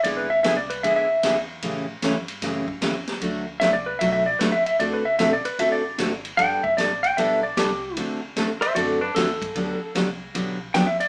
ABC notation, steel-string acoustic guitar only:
X:1
M:4/4
L:1/8
Q:"Swing" 1/4=151
K:G
V:1 name="Steel-string acoustic guitar"
[D,^G,B,E^G] z [D,G,B,EG] z [D,G,B,EG] z [D,G,B,EG] z | [^C,E,A,^CG] z [C,E,A,CG] z [C,E,A,CG] z [C,E,A,CG] z | [D,F,A,DF] z [D,F,A,DF] z [D,F,A,DF] z [D,F,A,DF] z | [D,A,CFA] z [D,A,CFA] z [D,A,CFA] z [D,A,CFA] z |
[G,B,DA] z [G,B,DA] z [G,B,DA] z [G,B,DA] z | [D,A,CFA] z [D,A,CFA] z [D,A,CFA] z [D,A,CFA] z | [D,F,B,DG] z [D,F,B,DG] z [D,F,B,DG] z [D,F,B,DG] z |]